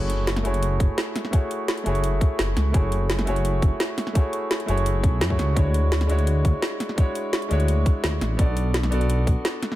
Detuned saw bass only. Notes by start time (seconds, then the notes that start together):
Already playing: F#1
0.45 F#1
0.80 F#1
1.86 F#1
2.39 F#1
2.56 C#2
2.74 F#1
3.27 F#1
3.62 F#1
4.68 F#1
5.03 B1
5.21 F#2
5.39 C#2
5.56 D2
6.09 D2
6.45 D2
7.51 D2
8.04 D2
8.21 A1
8.39 B1
8.92 B1
9.27 B1